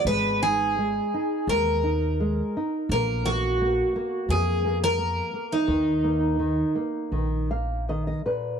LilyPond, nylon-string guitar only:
\new Staff \with { instrumentName = "Nylon-string guitar" } { \time 4/4 \key ees \minor \tempo 4 = 85 << { r1 | r1 | r2 r8 f''8 ees''16 ees''16 ces''8 | } \\ { aes8 ees'8 aes8 ees'8 aes8 ees'8 aes8 ees'8 | bes8 bes8 bes8 bes8 bes8 bes8 bes8 bes8 | ees8 bes8 ees8 bes8 ees8 bes8 ees8 bes,8 | } >> }